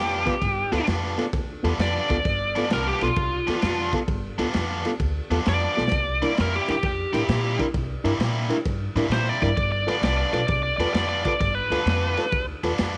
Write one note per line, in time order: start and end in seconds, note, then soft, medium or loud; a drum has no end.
0.00 0.25 F2 medium
0.00 0.32 G2 medium
0.00 0.32 F3 medium
0.00 0.32 B3 medium
0.00 0.33 D4 medium
0.00 0.85 G4 medium
0.26 0.34 B3 medium
0.26 0.34 F4 medium
0.26 0.34 B4 medium
0.26 kick medium
0.26 snare soft
0.26 ride medium
0.42 0.61 G1 medium
0.42 kick loud
0.42 snare soft
0.42 ride medium
0.72 0.82 D2 medium
0.72 0.86 G2 medium
0.72 0.87 F3 medium
0.72 0.80 B3 medium
0.72 0.87 B3 loud
0.72 0.88 D4 loud
0.72 0.80 F4 medium
0.72 0.80 A4 medium
0.72 snare soft
0.72 ride medium
0.87 1.16 F2 medium
0.87 1.23 G2 medium
0.87 1.23 F3 medium
0.87 1.23 B3 medium
0.87 1.24 D4 medium
0.87 snare loud
0.87 ride medium
1.18 1.26 B3 medium
1.18 1.26 F4 medium
1.18 1.26 A4 loud
1.18 snare soft
1.18 ride medium
1.33 1.52 D2 medium
1.33 kick loud
1.33 snare soft
1.33 ride medium
1.63 1.73 E2 medium
1.63 1.77 G2 medium
1.63 1.78 F3 medium
1.63 1.71 B3 medium
1.63 1.78 B3 medium
1.63 1.78 D4 loud
1.63 1.72 F4 medium
1.63 1.72 A4 loud
1.63 snare soft
1.63 ride medium
1.78 1.98 F2 medium
1.78 2.14 G2 medium
1.78 2.15 F3 medium
1.78 2.15 B3 medium
1.78 2.15 D4 medium
1.78 2.69 D5 loud
1.78 snare loud
1.78 ride medium
2.09 2.19 D2 loud
2.09 2.18 B3 medium
2.09 2.18 F4 medium
2.09 2.18 A4 medium
2.09 kick medium
2.09 snare soft
2.09 ride medium
2.25 2.54 G1 medium
2.25 kick loud
2.25 snare soft
2.25 ride medium
2.55 2.68 G2 medium
2.55 2.68 F3 medium
2.55 2.69 B3 medium
2.55 2.64 B3 medium
2.55 2.69 D4 medium
2.55 2.64 F4 medium
2.55 2.65 A4 loud
2.55 snare soft
2.55 ride medium
2.69 2.90 C2 loud
2.69 3.05 G2 medium
2.69 3.05 F3 medium
2.69 3.06 B3 medium
2.69 3.06 D4 medium
2.69 snare loud
2.69 ride medium
2.74 2.87 A#4 medium
2.87 3.02 G4 medium
3.01 3.11 B1 medium
3.01 3.09 B3 medium
3.01 3.10 F4 medium
3.01 3.91 F4 medium
3.01 3.10 A4 medium
3.01 snare soft
3.01 ride medium
3.16 3.36 C2 loud
3.16 kick loud
3.16 ride medium
3.47 3.57 E2 medium
3.47 3.60 G2 medium
3.47 3.61 F3 medium
3.47 3.61 B3 medium
3.47 3.55 B3 medium
3.47 3.61 D4 medium
3.47 3.56 F4 medium
3.47 3.56 A4 medium
3.47 snare soft
3.47 ride medium
3.61 3.91 F2 medium
3.61 3.97 G2 medium
3.61 3.97 F3 medium
3.61 3.98 B3 medium
3.61 3.98 D4 medium
3.61 snare loud
3.61 ride medium
3.92 4.01 B3 medium
3.92 4.01 F4 medium
3.92 4.01 A4 medium
3.92 kick medium
3.92 snare soft
3.92 ride medium
4.08 4.27 G1 medium
4.08 kick loud
4.08 ride medium
4.38 4.48 D2 medium
4.38 4.52 G2 medium
4.38 4.53 F3 medium
4.38 4.52 B3 medium
4.38 4.47 B3 medium
4.38 4.53 D4 medium
4.38 4.47 F4 medium
4.38 4.47 A4 medium
4.38 snare soft
4.38 ride medium
4.53 4.83 F2 medium
4.53 4.89 G2 medium
4.53 4.89 F3 medium
4.53 4.89 B3 medium
4.53 4.90 D4 medium
4.53 snare loud
4.53 ride medium
4.85 4.93 B3 medium
4.85 4.93 F4 medium
4.85 4.93 A4 medium
4.85 snare soft
4.85 ride medium
5.00 5.19 D2 medium
5.00 kick loud
5.00 ride medium
5.30 5.40 E2 medium
5.30 5.44 G2 medium
5.30 5.45 F3 medium
5.30 5.45 B3 medium
5.30 5.39 B3 medium
5.30 5.45 D4 medium
5.30 5.39 F4 medium
5.30 5.39 A4 loud
5.30 snare soft
5.30 ride medium
5.46 5.66 F2 medium
5.46 5.81 G2 medium
5.46 5.81 F3 medium
5.46 5.81 B3 medium
5.46 5.81 D4 medium
5.46 6.36 D5 loud
5.46 snare loud
5.46 ride medium
5.76 5.87 B1 medium
5.76 5.84 B3 medium
5.76 5.84 F4 medium
5.76 5.85 A4 medium
5.76 snare medium
5.88 snare loud
5.92 6.20 C2 medium
5.92 kick loud
5.92 ride medium
6.22 6.36 C3 medium
6.22 6.36 G3 medium
6.22 6.37 A#3 medium
6.22 6.30 D4 medium
6.22 6.37 E4 medium
6.22 6.30 E4 medium
6.22 6.30 A#4 loud
6.22 snare soft
6.22 ride medium
6.37 6.58 F2 medium
6.37 6.73 C3 medium
6.37 6.73 G3 medium
6.37 6.73 A#3 medium
6.37 6.73 E4 medium
6.37 6.54 A#4 medium
6.37 snare loud
6.37 ride medium
6.56 6.69 G4 medium
6.68 6.78 E2 medium
6.68 6.76 D4 medium
6.68 6.76 E4 medium
6.68 7.59 G4 loud
6.68 6.76 A#4 medium
6.68 snare soft
6.68 ride medium
6.83 7.02 F2 medium
6.83 kick loud
6.83 snare soft
6.83 ride medium
7.13 7.24 A2 medium
7.13 7.27 C3 medium
7.13 7.28 G3 medium
7.13 7.28 A#3 medium
7.13 7.21 D4 medium
7.13 7.28 E4 loud
7.13 7.21 E4 medium
7.13 7.22 A#4 medium
7.13 snare soft
7.13 ride medium
7.28 7.57 A#2 medium
7.28 7.64 C3 medium
7.28 7.64 G3 medium
7.28 7.64 A#3 medium
7.28 7.65 E4 medium
7.28 snare loud
7.28 ride medium
7.59 7.67 D4 medium
7.59 7.67 E4 medium
7.59 7.67 A#4 medium
7.59 kick medium
7.59 snare soft
7.59 ride medium
7.74 7.93 C2 medium
7.74 kick loud
7.74 snare soft
7.74 ride medium
8.04 8.14 G2 medium
8.04 8.18 C3 medium
8.04 8.18 G3 medium
8.04 8.18 A#3 loud
8.04 8.12 D4 medium
8.04 8.13 E4 medium
8.04 8.19 E4 loud
8.04 8.13 A#4 loud
8.04 snare soft
8.04 ride medium
8.19 8.48 A#2 loud
8.19 8.55 C3 medium
8.19 8.55 G3 medium
8.19 8.55 A#3 medium
8.19 8.56 E4 medium
8.19 snare loud
8.19 ride medium
8.50 8.58 D4 medium
8.50 8.58 E4 medium
8.50 8.58 A#4 medium
8.50 snare soft
8.50 ride medium
8.66 8.85 G2 medium
8.66 kick loud
8.66 snare soft
8.66 ride medium
8.95 9.05 A2 loud
8.95 9.09 C3 medium
8.95 9.10 G3 medium
8.95 9.10 A#3 medium
8.95 9.05 D4 medium
8.95 9.11 E4 loud
8.95 9.05 E4 medium
8.95 9.05 A#4 loud
8.95 snare soft
8.95 ride medium
9.09 9.29 A#2 medium
9.09 9.47 C3 medium
9.09 9.47 G3 medium
9.09 9.47 A#3 medium
9.09 9.47 E4 medium
9.09 9.29 C5 loud
9.09 snare loud
9.09 ride medium
9.29 9.42 D5 loud
9.42 9.52 G2 loud
9.42 9.50 D4 medium
9.42 9.50 E4 medium
9.42 9.51 A#4 medium
9.42 9.56 D5 medium
9.42 kick medium
9.42 snare soft
9.42 ride medium
9.57 9.86 G1 loud
9.57 9.71 D5 loud
9.57 kick loud
9.57 ride medium
9.72 9.88 D5 medium
9.87 10.01 G2 medium
9.87 10.02 F3 medium
9.87 10.02 B3 loud
9.87 10.03 D4 loud
9.87 9.95 F4 medium
9.87 9.95 A4 medium
9.87 9.96 B4 medium
9.87 10.04 D5 medium
9.87 snare soft
9.87 ride medium
10.02 10.22 C2 loud
10.02 10.39 G2 medium
10.02 10.39 F3 medium
10.02 10.39 B3 medium
10.02 10.39 D4 medium
10.02 10.16 D5 medium
10.02 snare loud
10.02 ride medium
10.18 10.32 D5 medium
10.33 10.43 B1 medium
10.33 10.42 F4 medium
10.33 10.42 A4 medium
10.33 10.42 B4 medium
10.33 10.46 D5 medium
10.33 snare soft
10.33 ride medium
10.47 10.68 C2 medium
10.47 10.62 D5 medium
10.47 kick loud
10.47 snare soft
10.47 ride medium
10.63 10.76 D5 medium
10.77 10.88 E2 medium
10.77 10.94 G2 medium
10.77 10.94 F3 medium
10.77 10.95 B3 loud
10.77 10.95 D4 loud
10.77 10.88 F4 medium
10.77 10.88 A4 medium
10.77 10.88 B4 medium
10.77 10.93 D5 medium
10.77 snare soft
10.77 ride medium
10.94 11.23 F2 medium
10.94 11.31 G2 medium
10.94 11.31 F3 medium
10.94 11.31 B3 medium
10.94 11.31 D4 medium
10.94 11.08 D5 medium
10.94 snare loud
10.94 ride medium
11.09 11.23 D5 medium
11.25 11.33 F4 medium
11.25 11.34 A4 medium
11.25 11.34 B4 medium
11.25 11.40 D5 medium
11.25 kick medium
11.25 snare soft
11.25 ride medium
11.40 11.60 G1 medium
11.40 11.55 D5 medium
11.40 kick loud
11.40 snare soft
11.40 ride medium
11.55 12.45 B4 medium
11.70 11.80 D2 medium
11.70 11.86 G2 medium
11.70 11.87 F3 medium
11.70 11.87 B3 loud
11.70 11.87 D4 loud
11.70 11.79 F4 medium
11.70 11.80 A4 medium
11.70 11.80 B4 medium
11.70 snare soft
11.70 ride medium
11.86 12.15 F2 medium
11.86 12.23 G2 medium
11.86 12.23 F3 medium
11.86 12.23 B3 medium
11.86 12.23 D4 medium
11.86 snare loud
11.86 ride medium
12.17 12.25 F4 medium
12.17 12.26 A4 medium
12.17 12.26 B4 medium
12.17 snare soft
12.17 ride medium
12.32 12.51 D2 medium
12.32 kick loud
12.32 ride medium
12.63 12.73 E2 medium
12.63 12.77 G2 medium
12.63 12.78 F3 medium
12.63 12.78 B3 medium
12.63 12.79 D4 medium
12.63 12.71 F4 medium
12.63 12.72 A4 medium
12.63 12.72 B4 loud
12.63 snare soft
12.63 ride medium
12.78 12.97 F2 medium
12.78 12.97 G2 medium
12.78 12.97 F3 medium
12.78 12.97 B3 medium
12.78 12.97 D4 medium
12.78 snare loud
12.78 ride medium